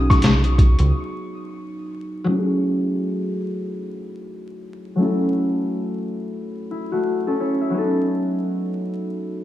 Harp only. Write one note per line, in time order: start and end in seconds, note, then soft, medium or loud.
0.00 2.23 F#3 medium
0.00 2.65 B3 medium
0.00 2.28 C#4 medium
0.00 2.29 D#4 medium
0.00 2.32 G#4 medium
2.24 4.95 F#3 medium
2.24 4.97 A3 medium
2.28 4.99 C#4 medium
2.28 4.98 E4 medium
2.28 2.38 G4 medium
2.39 5.04 G#4 medium
4.96 7.69 F#3 medium
4.96 6.92 A3 medium
4.96 7.27 C#4 medium
5.02 6.71 E4 medium
5.02 7.23 A4 medium
6.71 7.40 E4 medium
6.92 9.44 A3 medium
6.92 9.35 F#4 medium
7.27 7.73 C#4 medium
7.27 7.77 A4 medium
7.40 7.82 E4 medium
7.40 9.31 C#5 medium
7.61 9.33 E5 medium
7.70 9.44 F#3 medium
7.70 9.44 B3 medium
7.74 9.44 C#4 medium
7.74 9.44 D#4 medium
7.74 9.44 A4 medium